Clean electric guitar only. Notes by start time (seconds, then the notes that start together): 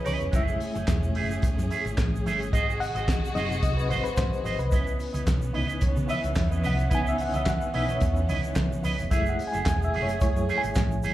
0.05 E4 B4 D#5
0.20 muted clean electric guitar stroke
0.31 G#3 D#4 G4
0.42 A3 E4 G#4
0.59 muted clean electric guitar stroke
0.74 A3 E4 G#4
1.02 muted clean electric guitar stroke
1.14 A3 E4 G#4
1.29 A3 E4 G#4
1.57 muted clean electric guitar stroke
1.70 A3 E4 G#4
1.85 muted clean electric guitar stroke
2.13 muted clean electric guitar stroke
2.26 A3 E4 G#4
2.41 muted clean electric guitar stroke
2.53 F#4 C5 D#5
2.81 muted clean electric guitar stroke
2.95 F#4 C5 D#5
3.23 muted clean electric guitar stroke
3.36 F#4 C5 D#5
3.50 F#4 C5 D#5
3.77 muted clean electric guitar stroke
3.89 F#4 C5 D#5
4.04 muted clean electric guitar stroke
4.32 muted clean electric guitar stroke
4.44 F#4 C5 D#5
4.59 muted clean electric guitar stroke
4.72 E4 B4 D#5
4.99 muted clean electric guitar stroke
5.13 E4 B4 D#5
5.26 muted clean electric guitar stroke
5.41 muted clean electric guitar stroke
5.53 E4 B4 D#5
5.67 E4 B4 D#5
5.95 muted clean electric guitar stroke
6.07 E4 B4 D#5
6.22 muted clean electric guitar stroke
6.36 muted clean electric guitar stroke
6.50 E4 B4 D#5
6.63 E4 B4 D#5
6.77 muted clean electric guitar stroke
6.90 E4 B4 D#5
7.18 muted clean electric guitar stroke
7.33 E4 B4 D#5
7.45 muted clean electric guitar stroke
7.60 muted clean electric guitar stroke
7.73 E4 B4 D#5
7.88 E4 B4 D#5
8.15 muted clean electric guitar stroke
8.28 E4 B4 D#5
8.42 muted clean electric guitar stroke
8.70 muted clean electric guitar stroke
8.83 E4 B4 D#5
8.98 muted clean electric guitar stroke
9.11 A3 E4 G#4
9.38 muted clean electric guitar stroke
9.52 A3 E4 G#4
9.66 muted clean electric guitar stroke
9.80 muted clean electric guitar stroke
9.94 A3 E4 G#4
10.08 A3 E4 G#4
10.36 muted clean electric guitar stroke
10.48 A3 E4 G#4
10.63 muted clean electric guitar stroke
10.90 muted clean electric guitar stroke
11.03 A3 E4 G#4